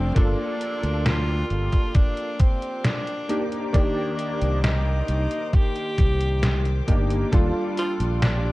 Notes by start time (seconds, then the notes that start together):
Already playing: F1 F3 A3 C4 D4 A4 F5 C6 D6
0.14 G1 A#3 D4 F4 G4 A4 D6, kick, closed hi-hat
0.61 closed hi-hat
0.83 D2, closed hi-hat
1.06 F4, snare, closed hi-hat
1.50 G1, closed hi-hat
1.73 kick, closed hi-hat
1.95 D4, kick, closed hi-hat
2.17 closed hi-hat
2.40 C4, kick, closed hi-hat
2.62 closed hi-hat
2.84 D4, snare, closed hi-hat
3.07 closed hi-hat
3.29 A#3 D4 D#4 G4 C5, closed hi-hat
3.52 closed hi-hat
3.73 D#3 A#3 D4 G4 D5, kick, closed hi-hat
4.19 closed hi-hat
4.41 C2, closed hi-hat
4.64 D#4, snare, closed hi-hat
5.08 C2, closed hi-hat
5.31 closed hi-hat
5.53 G4, kick, closed hi-hat
5.76 closed hi-hat
5.98 C2, kick, closed hi-hat
6.21 closed hi-hat
6.43 snare, closed hi-hat
6.65 closed hi-hat
6.87 G1 A#3 D4 D#4 G4, kick, closed hi-hat
7.10 closed hi-hat
7.31 D#2 G3 D4 F4 A4 F5 G5, kick, closed hi-hat
7.77 F4, closed hi-hat
8.00 A#1, closed hi-hat
8.22 D4, snare, closed hi-hat